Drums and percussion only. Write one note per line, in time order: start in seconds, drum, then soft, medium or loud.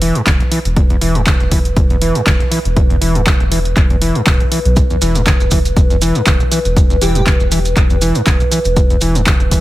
0.02 open hi-hat loud
0.15 closed hi-hat medium
0.27 kick loud
0.27 clap loud
0.27 closed hi-hat medium
0.40 closed hi-hat soft
0.52 open hi-hat loud
0.65 closed hi-hat soft
0.76 kick loud
0.76 closed hi-hat medium
0.90 closed hi-hat soft
1.01 open hi-hat loud
1.15 closed hi-hat medium
1.27 kick loud
1.27 clap loud
1.27 closed hi-hat soft
1.40 closed hi-hat soft
1.52 kick medium
1.52 open hi-hat loud
1.65 closed hi-hat soft
1.76 kick loud
1.76 closed hi-hat soft
1.90 closed hi-hat soft
2.02 open hi-hat loud
2.15 closed hi-hat soft
2.27 kick loud
2.27 clap loud
2.27 closed hi-hat soft
2.40 closed hi-hat soft
2.52 open hi-hat loud
2.65 closed hi-hat soft
2.77 kick loud
2.77 closed hi-hat medium
2.90 closed hi-hat soft
3.02 open hi-hat loud
3.15 closed hi-hat soft
3.27 kick loud
3.27 clap loud
3.27 closed hi-hat medium
3.40 closed hi-hat soft
3.52 open hi-hat loud
3.65 closed hi-hat soft
3.77 kick loud
3.77 clap medium
3.77 closed hi-hat soft
3.90 closed hi-hat soft
4.02 open hi-hat loud
4.15 closed hi-hat soft
4.27 kick loud
4.27 clap loud
4.27 closed hi-hat soft
4.40 closed hi-hat soft
4.52 open hi-hat loud
4.65 closed hi-hat soft
4.76 kick loud
4.76 closed hi-hat soft
4.76 maracas medium
4.90 closed hi-hat soft
4.90 maracas soft
5.02 open hi-hat loud
5.02 maracas loud
5.15 closed hi-hat medium
5.15 maracas soft
5.27 kick loud
5.27 clap loud
5.27 closed hi-hat soft
5.27 maracas soft
5.40 closed hi-hat soft
5.40 maracas soft
5.51 kick medium
5.51 open hi-hat loud
5.51 maracas medium
5.65 closed hi-hat soft
5.65 maracas soft
5.77 kick loud
5.77 closed hi-hat soft
5.77 maracas medium
5.90 closed hi-hat soft
5.90 maracas soft
6.02 open hi-hat loud
6.02 maracas loud
6.15 closed hi-hat soft
6.15 maracas soft
6.26 kick loud
6.26 clap loud
6.26 closed hi-hat soft
6.26 maracas medium
6.40 closed hi-hat soft
6.40 maracas soft
6.52 open hi-hat loud
6.52 maracas medium
6.65 closed hi-hat soft
6.65 maracas soft
6.77 kick loud
6.77 closed hi-hat medium
6.77 maracas medium
6.90 closed hi-hat soft
6.90 maracas soft
7.02 open hi-hat loud
7.02 maracas medium
7.15 closed hi-hat medium
7.15 maracas soft
7.26 kick loud
7.26 clap loud
7.26 closed hi-hat medium
7.26 maracas soft
7.40 closed hi-hat soft
7.40 maracas soft
7.52 open hi-hat loud
7.52 maracas medium
7.65 closed hi-hat medium
7.65 maracas soft
7.77 kick loud
7.77 clap medium
7.77 closed hi-hat soft
7.77 maracas soft
7.90 closed hi-hat soft
7.90 maracas soft
8.02 open hi-hat loud
8.02 maracas medium
8.15 closed hi-hat soft
8.15 maracas soft
8.27 kick loud
8.27 clap loud
8.27 closed hi-hat medium
8.27 maracas soft
8.40 closed hi-hat soft
8.40 maracas soft
8.52 open hi-hat loud
8.52 maracas medium
8.65 closed hi-hat medium
8.65 maracas soft
8.76 kick loud
8.76 closed hi-hat medium
8.76 maracas medium
8.90 closed hi-hat soft
8.90 maracas soft
9.01 open hi-hat loud
9.01 maracas medium
9.15 closed hi-hat medium
9.15 maracas soft
9.26 kick loud
9.26 clap loud
9.26 closed hi-hat medium
9.26 maracas soft
9.40 closed hi-hat soft
9.40 maracas soft
9.51 kick medium
9.51 open hi-hat loud
9.51 maracas medium